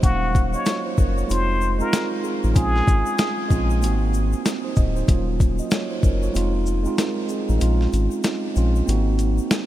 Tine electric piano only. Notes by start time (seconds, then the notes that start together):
Already playing: D#4 C5
0.01 F#3 A#3 C#4 F5
0.54 F#4 D#5
0.66 F4 C#5
0.86 D#4 C5
0.98 C#4 A#4
1.17 F4 C#5
1.27 G#3 C4 D#4 F4
1.78 G#3 C4 D#4 F4
1.93 A#4
2.24 C4 G#4
2.44 D#4
2.53 G#3 C4 C#4 F4
3.48 G#3 C4 C#4 F4
3.80 A#3 C4 D#4 F#4
4.65 D#4 C5
4.77 F#4 D#5
4.96 D#4 C5
5.06 F#3 A#3 C#4 F4
5.59 F#4 D#5
5.72 F4 C#5
5.91 D#4 C5
6.04 C#4 A#4
6.23 F4 C#5
6.33 G#3 C4 D#4
6.37 F4
6.84 G#3 C4 D#4 F4
6.98 A#4
7.29 C4 G#4
7.50 D#4
7.58 G#3 C4 C#4
7.62 F4
8.54 G#3 C4 C#4 F4
8.86 A#3 C4 D#4
8.90 F#4